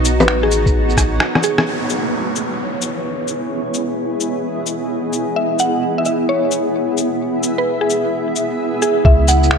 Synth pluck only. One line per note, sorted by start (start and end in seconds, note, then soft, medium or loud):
0.20 0.40 B4 medium
0.43 0.67 G#4 medium
1.44 1.67 G#4 medium
5.36 5.57 E5 medium
5.60 5.84 F#5 medium
5.98 6.03 E5 medium
6.06 6.15 E5 medium
6.29 6.53 C#5 medium
7.58 7.78 B4 medium
7.81 8.05 G#4 medium
8.82 9.05 G#4 medium
9.05 9.27 E5 medium
9.28 9.53 F#5 medium